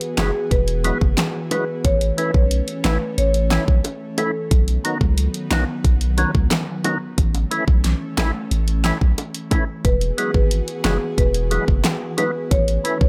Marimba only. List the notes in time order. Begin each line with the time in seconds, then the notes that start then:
0.18 G#4
0.51 B4
1.51 B4
1.85 C#5
2.18 B4
2.35 C#5
2.85 B4
3.18 C#5
4.18 A4
9.85 B4
10.18 G#4
10.35 B4
10.85 G#4
11.18 B4
12.18 B4
12.51 C#5
12.85 B4
13.01 C#5